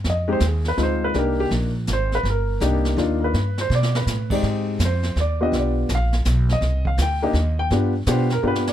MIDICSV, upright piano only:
0, 0, Header, 1, 2, 480
1, 0, Start_track
1, 0, Key_signature, -3, "minor"
1, 0, Tempo, 364520
1, 63, Time_signature, 3, 2, 24, 8
1, 11494, End_track
2, 0, Start_track
2, 0, Title_t, "Upright piano"
2, 0, Program_c, 0, 0
2, 127, Note_on_c, 0, 75, 65
2, 364, Note_on_c, 0, 56, 73
2, 368, Note_on_c, 0, 60, 66
2, 371, Note_on_c, 0, 63, 61
2, 378, Note_on_c, 0, 67, 77
2, 396, Note_off_c, 0, 75, 0
2, 428, Note_on_c, 0, 72, 88
2, 525, Note_off_c, 0, 56, 0
2, 527, Note_off_c, 0, 60, 0
2, 528, Note_off_c, 0, 63, 0
2, 532, Note_off_c, 0, 67, 0
2, 570, Note_off_c, 0, 72, 0
2, 605, Note_on_c, 0, 68, 59
2, 877, Note_off_c, 0, 68, 0
2, 900, Note_on_c, 0, 71, 80
2, 1014, Note_on_c, 0, 56, 57
2, 1017, Note_on_c, 0, 60, 49
2, 1019, Note_on_c, 0, 65, 66
2, 1024, Note_on_c, 0, 63, 55
2, 1047, Note_off_c, 0, 71, 0
2, 1093, Note_on_c, 0, 72, 88
2, 1362, Note_off_c, 0, 72, 0
2, 1375, Note_on_c, 0, 71, 75
2, 1498, Note_off_c, 0, 63, 0
2, 1505, Note_off_c, 0, 56, 0
2, 1506, Note_off_c, 0, 60, 0
2, 1507, Note_off_c, 0, 65, 0
2, 1513, Note_on_c, 0, 62, 61
2, 1514, Note_on_c, 0, 58, 63
2, 1517, Note_on_c, 0, 67, 69
2, 1518, Note_on_c, 0, 63, 53
2, 1526, Note_off_c, 0, 71, 0
2, 1550, Note_on_c, 0, 70, 72
2, 1826, Note_off_c, 0, 67, 0
2, 1832, Note_off_c, 0, 70, 0
2, 1846, Note_on_c, 0, 67, 94
2, 1942, Note_off_c, 0, 67, 0
2, 2242, Note_off_c, 0, 62, 0
2, 2243, Note_off_c, 0, 58, 0
2, 2245, Note_off_c, 0, 63, 0
2, 2542, Note_on_c, 0, 72, 86
2, 2810, Note_off_c, 0, 72, 0
2, 2830, Note_on_c, 0, 71, 72
2, 2977, Note_off_c, 0, 71, 0
2, 3029, Note_on_c, 0, 70, 76
2, 3440, Note_on_c, 0, 58, 67
2, 3445, Note_off_c, 0, 70, 0
2, 3445, Note_on_c, 0, 62, 60
2, 3445, Note_on_c, 0, 63, 64
2, 3447, Note_on_c, 0, 67, 75
2, 3899, Note_off_c, 0, 58, 0
2, 3900, Note_off_c, 0, 62, 0
2, 3900, Note_off_c, 0, 63, 0
2, 3909, Note_off_c, 0, 67, 0
2, 3919, Note_on_c, 0, 58, 63
2, 3920, Note_on_c, 0, 62, 55
2, 3920, Note_on_c, 0, 63, 58
2, 3926, Note_on_c, 0, 65, 70
2, 4213, Note_on_c, 0, 70, 56
2, 4233, Note_off_c, 0, 70, 0
2, 4270, Note_on_c, 0, 71, 68
2, 4402, Note_off_c, 0, 58, 0
2, 4403, Note_off_c, 0, 62, 0
2, 4403, Note_off_c, 0, 63, 0
2, 4406, Note_off_c, 0, 65, 0
2, 4700, Note_off_c, 0, 71, 0
2, 4753, Note_on_c, 0, 72, 83
2, 4901, Note_off_c, 0, 72, 0
2, 4935, Note_on_c, 0, 74, 88
2, 5209, Note_off_c, 0, 74, 0
2, 5217, Note_on_c, 0, 71, 57
2, 5652, Note_off_c, 0, 71, 0
2, 5681, Note_on_c, 0, 56, 61
2, 5684, Note_on_c, 0, 60, 51
2, 5689, Note_on_c, 0, 67, 66
2, 5690, Note_on_c, 0, 63, 55
2, 5690, Note_on_c, 0, 74, 80
2, 5850, Note_off_c, 0, 74, 0
2, 6295, Note_off_c, 0, 56, 0
2, 6297, Note_off_c, 0, 60, 0
2, 6299, Note_off_c, 0, 67, 0
2, 6300, Note_off_c, 0, 63, 0
2, 6389, Note_on_c, 0, 72, 73
2, 6805, Note_off_c, 0, 72, 0
2, 6851, Note_on_c, 0, 74, 79
2, 7121, Note_on_c, 0, 59, 66
2, 7121, Note_on_c, 0, 62, 57
2, 7121, Note_on_c, 0, 65, 60
2, 7126, Note_off_c, 0, 74, 0
2, 7126, Note_on_c, 0, 67, 69
2, 7146, Note_on_c, 0, 75, 82
2, 7296, Note_off_c, 0, 75, 0
2, 7354, Note_on_c, 0, 74, 68
2, 7732, Note_off_c, 0, 62, 0
2, 7732, Note_off_c, 0, 65, 0
2, 7733, Note_off_c, 0, 59, 0
2, 7735, Note_off_c, 0, 67, 0
2, 7766, Note_off_c, 0, 74, 0
2, 7833, Note_on_c, 0, 77, 89
2, 8095, Note_off_c, 0, 77, 0
2, 8593, Note_on_c, 0, 75, 85
2, 9015, Note_off_c, 0, 75, 0
2, 9047, Note_on_c, 0, 77, 80
2, 9202, Note_off_c, 0, 77, 0
2, 9244, Note_on_c, 0, 79, 93
2, 9513, Note_on_c, 0, 58, 70
2, 9516, Note_off_c, 0, 79, 0
2, 9522, Note_on_c, 0, 62, 58
2, 9523, Note_on_c, 0, 63, 65
2, 9523, Note_on_c, 0, 67, 76
2, 9538, Note_on_c, 0, 75, 68
2, 9661, Note_off_c, 0, 58, 0
2, 9666, Note_off_c, 0, 62, 0
2, 9666, Note_off_c, 0, 63, 0
2, 9666, Note_off_c, 0, 67, 0
2, 9964, Note_off_c, 0, 75, 0
2, 9998, Note_on_c, 0, 79, 94
2, 10095, Note_off_c, 0, 79, 0
2, 10163, Note_on_c, 0, 59, 64
2, 10165, Note_on_c, 0, 62, 61
2, 10167, Note_on_c, 0, 65, 58
2, 10171, Note_on_c, 0, 67, 67
2, 10431, Note_off_c, 0, 59, 0
2, 10432, Note_off_c, 0, 62, 0
2, 10433, Note_off_c, 0, 65, 0
2, 10435, Note_off_c, 0, 67, 0
2, 10631, Note_on_c, 0, 65, 72
2, 10632, Note_on_c, 0, 59, 81
2, 10636, Note_on_c, 0, 62, 75
2, 10642, Note_on_c, 0, 67, 89
2, 10684, Note_on_c, 0, 72, 74
2, 10903, Note_off_c, 0, 65, 0
2, 10904, Note_off_c, 0, 59, 0
2, 10906, Note_off_c, 0, 62, 0
2, 10909, Note_off_c, 0, 67, 0
2, 10952, Note_off_c, 0, 72, 0
2, 10963, Note_on_c, 0, 70, 90
2, 11100, Note_on_c, 0, 59, 70
2, 11104, Note_on_c, 0, 65, 69
2, 11106, Note_on_c, 0, 62, 67
2, 11107, Note_on_c, 0, 67, 71
2, 11114, Note_off_c, 0, 70, 0
2, 11161, Note_on_c, 0, 71, 82
2, 11376, Note_off_c, 0, 59, 0
2, 11378, Note_off_c, 0, 65, 0
2, 11379, Note_off_c, 0, 62, 0
2, 11380, Note_off_c, 0, 67, 0
2, 11429, Note_off_c, 0, 71, 0
2, 11431, Note_on_c, 0, 74, 80
2, 11494, Note_off_c, 0, 74, 0
2, 11494, End_track
0, 0, End_of_file